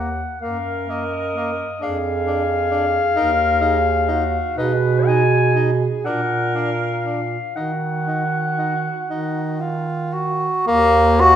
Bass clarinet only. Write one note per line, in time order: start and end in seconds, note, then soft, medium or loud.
0.00 0.24 D#2 medium
0.41 1.65 F#2 medium
1.81 3.00 F2 medium
3.15 4.39 D#2 medium
4.57 5.87 B2 medium
6.04 7.38 A#2 medium
7.55 8.90 D#3 medium
9.08 10.48 D#3 medium
10.67 11.36 D#2 loud